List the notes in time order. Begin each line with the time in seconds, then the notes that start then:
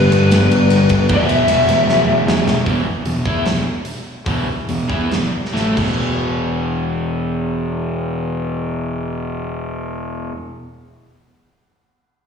Already playing: G2 D3 G3 B4
0.12 G1, ride
0.31 G1, snare, ride
0.51 G1, ride
0.70 G1, ride
0.89 G1, kick, ride
1.09 E1 E2 B2 E3, kick, ride
1.13 E5
1.29 E1, ride
1.48 E1, ride
1.67 E1, snare, ride
1.86 E1, snare
2.06 E1
2.26 E1, snare
2.46 E1, snare
2.65 E1 E2 B2 E3, kick, open hi-hat
2.85 muted fingered electric bass stroke, muted overdriven electric guitar stroke
3.05 E1 E2 B2, open hi-hat
3.25 E2 E3 B3 E4, kick
3.46 E1 E2 B2, snare, open hi-hat
3.85 open hi-hat
4.26 E1 E2 B2 E3, kick, open hi-hat
4.47 muted fingered electric bass stroke, muted overdriven electric guitar stroke
4.69 E1 E2 B2, open hi-hat
4.88 E2 E3 B3 E4, kick
5.11 E1 E2 B2, snare, open hi-hat
5.45 snare
5.53 A1 A2 E3 A3, snare
5.76 E1 E2 B2, kick, crash
5.80 E3